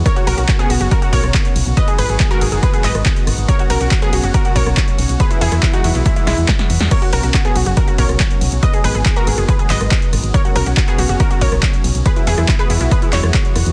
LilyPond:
<<
  \new Staff \with { instrumentName = "Grand piano" } { \time 4/4 \key b \major \tempo 4 = 140 cis'''16 fis''16 ais''16 fis''16 r16 gis''16 fis''16 fis''16 ais''16 fis''16 cis'''4~ cis'''16 r16 | dis'''16 gis''16 b''16 gis''16 r16 ais''16 gis''16 gis''16 b''16 gis''16 dis'''4~ dis'''16 r16 | cis'''16 fis''16 ais''16 fis''16 r16 gis''16 fis''16 fis''16 ais''16 fis''16 cis'''4~ cis'''16 r16 | b''16 e''16 gis''16 e''16 e''16 fis''16 e''16 e''16 e''16 e''16 e''4~ e''16 r16 |
cis'''16 fis''16 ais''16 fis''16 fis''16 gis''16 fis''16 fis''16 ais''16 fis''16 cis'''4~ cis'''16 r16 | dis'''16 gis''16 b''16 gis''16 r16 ais''16 gis''16 gis''16 b''16 gis''16 dis'''4~ dis'''16 r16 | cis'''16 fis''16 ais''16 fis''16 fis''16 gis''16 fis''16 fis''16 ais''16 fis''16 cis'''4~ cis'''16 r16 | b''16 e''16 gis''16 e''16 r16 b''16 e''16 e''16 b''16 e''16 cis'''4~ cis'''16 r16 | }
  \new Staff \with { instrumentName = "Synth pluck" } { \time 4/4 \key b \major <ais' cis''>16 fis'16 <fis' ais'>16 fis'16 fis'16 <b gis'>16 fis'16 fis'16 <fis' ais'>16 fis'16 <ais' cis''>4~ <ais' cis''>16 r16 | <b' dis''>16 gis'16 <gis' b'>16 gis'16 gis'16 <fis' ais'>16 gis'16 gis'16 <gis' b'>16 gis'16 <b' dis''>4~ <b' dis''>16 r16 | <ais' cis''>16 fis'16 <fis' ais'>16 fis'16 fis'16 <b gis'>16 fis'16 fis'16 <fis' ais'>16 fis'16 <ais' cis''>4~ <ais' cis''>16 r16 | <gis' b'>16 e'16 <e' gis'>16 e'16 e'16 <dis' fis'>16 e'16 e'16 <gis e'>16 e'16 <gis e'>4~ <gis e'>16 r16 |
<ais' cis''>16 fis'16 <fis' ais'>16 fis'16 fis'16 <b gis'>16 fis'16 fis'16 <fis' ais'>16 fis'16 <ais' cis''>4~ <ais' cis''>16 r16 | <b' dis''>16 gis'16 <gis' b'>16 gis'16 gis'16 <fis' ais'>16 gis'16 gis'16 <gis' b'>16 gis'16 <b' dis''>4~ <b' dis''>16 r16 | <ais' cis''>16 fis'16 <fis' ais'>16 fis'16 fis'16 <b gis'>16 fis'16 fis'16 <fis' ais'>16 fis'16 <ais' cis''>4~ <ais' cis''>16 r16 | <gis' b'>16 e'16 <e' gis'>16 e'16 r16 <gis' b'>16 e'16 e'16 <gis' b'>16 e'16 <e' cis''>4~ <e' cis''>16 r16 | }
  \new Staff \with { instrumentName = "Analog synth pad" } { \clef bass \time 4/4 \key b \major << { fis'1 | fis'1~ | fis'1~ | fis'1~ |
fis'1~ | fis'1~ | fis'1 | fis'1 | } \\ { <b, cis fis cis'>1 | <dis fis gis b>1 | <b, cis fis cis'>1 | <e fis gis b>1 |
<b, cis cis'>1 | <dis gis b>1 | <b, cis fis cis'>1 | <e fis gis b>1 | } >> }
  \new Staff \with { instrumentName = "FM bass" } { \clef bass \time 4/4 \key b \major r8 b,,16 b,,16 r8 b,,16 fis,,16 r8 b,,16 b,,16 r8 b,,16 b,,16 | r8 gis,,16 gis,,16 r8 gis,,16 fis,,16 r8 gis,,16 gis,,16 r8 gis,,16 gis,,16 | r8 b,,16 b,,16 r8 b,,16 fis,,16 r8 b,,16 b,,16 r8 b,,16 b,,16 | r8 e,16 e,16 r8 e,16 b,,16 r8 b,,16 e,16 r8 e,16 e,16 |
r8 b,,16 b,,16 r8 b,,16 fis,,16 r8 b,,16 b,,16 r8 b,,16 b,,16 | r8 gis,,16 gis,,16 r8 gis,,16 fis,,16 r8 gis,,16 gis,,16 r8 gis,,16 gis,,16 | r8 b,,16 b,,16 r8 b,,16 fis,,16 r8 b,,16 b,,16 r8 b,,16 b,,16 | r8 e,16 e,16 r8 e,16 b,,16 r8 e,16 e,16 r8 e,16 e,16 | }
  \new DrumStaff \with { instrumentName = "Drums" } \drummode { \time 4/4 <hh bd cymr>16 hh16 <hho cymr>16 hh16 <hc hh bd cymr>16 hh16 <hho cymr>16 hh16 <hh bd cymr>16 hh16 <hho bd cymr>16 <hh ss>16 <hc hh bd cymr>16 hh16 <hho cymr>16 hh16 | <hh bd cymr>16 hh16 <hho cymr>16 hh16 <hc hh bd cymr>16 hh16 <hho cymr>16 hh16 <hh bd cymr>16 hh16 <hc hho cymr>16 <hh ss>16 <hc hh bd cymr>16 hh16 <hho cymr ss>16 hh16 | <hh bd cymr>16 hh16 <hho cymr>16 hh16 <hc hh bd cymr>16 hh16 <hho cymr>16 hh16 <hh bd cymr>16 hh16 <hho bd cymr>16 <hh ss>16 <hc hh bd>16 hh16 <hho cymr>16 hh16 | <hh bd cymr>16 hh16 <hho cymr>16 <hh ss>16 <hc hh bd>16 hh16 <hho cymr>16 hh16 <hh bd cymr>16 hh16 <hho cymr sn>16 hh16 <hc hh bd cymr sn>16 <hh sn>16 <hho cymr>16 <hh sn>16 |
<cymc hh bd cymr>16 hh16 <hho cymr>16 hh16 <hc hh bd cymr>16 hh16 <hho cymr>16 hh16 <hh bd cymr>16 hh16 <hho bd cymr>16 <hh ss>16 <hc hh bd cymr>16 hh16 <hho cymr>16 hh16 | <hh bd cymr>16 hh16 <hho cymr>16 hh16 <hc hh bd cymr>16 hh16 <hho cymr>16 hh16 <hh bd cymr>16 hh16 <hc hho cymr>16 <hh ss>16 <hc hh bd cymr>16 hh16 <hho cymr ss>16 hh16 | <hh bd cymr>16 hh16 <hho cymr>16 hh16 <hc hh bd cymr>16 hh16 <hho cymr>16 hh16 <hh bd cymr>16 hh16 <hho bd cymr>16 <hh ss>16 <hc hh bd cymr>16 hh16 <hho cymr>16 hh16 | <hh bd cymr>16 hh16 <hho cymr>16 <hh ss>16 <hc hh bd cymr>16 hh16 <hho cymr>16 hh16 <hh bd cymr>16 hh16 <hc hho cymr>16 <hh ss>16 <hc hh bd cymr>16 hh16 <hho cymr ss>16 hh16 | }
>>